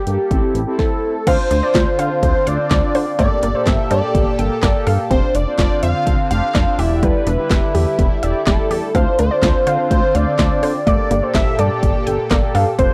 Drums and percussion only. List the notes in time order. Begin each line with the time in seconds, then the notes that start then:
0.07 closed hi-hat
0.31 kick, closed hi-hat
0.55 closed hi-hat
0.79 kick, snare
1.27 kick, closed hi-hat, crash
1.51 closed hi-hat
1.75 kick, snare, clap, closed hi-hat
1.99 closed hi-hat
2.23 kick, closed hi-hat
2.47 closed hi-hat
2.71 kick, snare, clap, closed hi-hat
2.95 open hi-hat
3.19 kick, closed hi-hat
3.43 closed hi-hat
3.67 kick, snare, clap, closed hi-hat
3.91 closed hi-hat
4.15 kick, closed hi-hat
4.39 closed hi-hat
4.63 kick, snare, clap, closed hi-hat
4.87 open hi-hat
5.11 kick, closed hi-hat
5.35 closed hi-hat
5.59 kick, snare, clap, closed hi-hat
5.83 closed hi-hat
6.07 kick, closed hi-hat
6.31 closed hi-hat
6.55 kick, snare, clap, closed hi-hat
6.79 open hi-hat
7.03 kick, closed hi-hat
7.27 closed hi-hat
7.50 kick, snare, clap, closed hi-hat
7.75 open hi-hat
7.99 kick, closed hi-hat
8.23 closed hi-hat
8.47 kick, snare, clap, closed hi-hat
8.71 open hi-hat
8.95 kick, closed hi-hat
9.19 closed hi-hat
9.43 kick, snare, clap, closed hi-hat
9.67 closed hi-hat
9.91 kick, closed hi-hat
10.15 closed hi-hat
10.39 kick, snare, clap, closed hi-hat
10.63 open hi-hat
10.87 kick, closed hi-hat
11.11 closed hi-hat
11.35 kick, snare, clap, closed hi-hat
11.59 closed hi-hat
11.83 kick, closed hi-hat
12.07 closed hi-hat
12.31 kick, snare, clap, closed hi-hat
12.55 open hi-hat
12.79 kick, closed hi-hat